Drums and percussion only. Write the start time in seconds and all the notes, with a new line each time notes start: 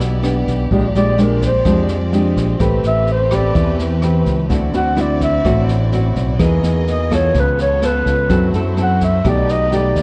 0.00 snare
0.23 cross-stick, snare
0.47 kick, snare
0.71 kick, snare
0.95 snare
1.18 cross-stick, snare
1.42 kick, snare
1.65 kick, cross-stick, snare
1.88 snare
2.13 snare
2.37 kick, snare
2.60 kick, cross-stick, snare
2.84 snare
3.07 snare
3.31 kick, cross-stick, snare
3.55 kick, snare
3.79 snare
4.02 cross-stick, snare
4.26 kick, snare
4.50 kick, snare
4.74 snare
4.97 cross-stick, snare
5.21 kick, snare
5.45 kick, cross-stick, snare
5.69 snare
5.92 snare
6.16 kick, snare
6.39 kick, cross-stick, snare
6.63 snare
6.87 snare
7.11 kick, cross-stick, snare
7.34 kick, snare
7.58 snare
7.82 cross-stick, snare
8.06 kick, snare
8.29 kick, snare
8.53 snare
8.77 cross-stick, snare
9.01 kick, snare
9.25 kick, cross-stick, snare
9.49 snare
9.72 snare
9.96 kick, snare